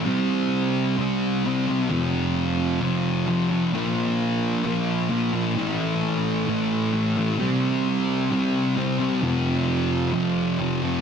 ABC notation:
X:1
M:4/4
L:1/8
Q:1/4=131
K:Cmix
V:1 name="Distorted electric guitar" clef=bass
[C,G,C]4 [C,G,C]2 [C,G,C] [G,C] | [F,,C,F,]4 [F,,C,F,]2 [F,,C,F,] [C,F,] | [B,,F,B,]4 [B,,F,B,]2 [B,,F,B,] [F,B,] | [A,,E,A,]4 [A,,E,A,]2 [A,,E,A,] [E,A,] |
[C,G,C]4 [C,G,C]2 [C,G,C] [G,C] | [F,,C,F,]4 [F,,C,F,]2 [F,,C,F,] [C,F,] |]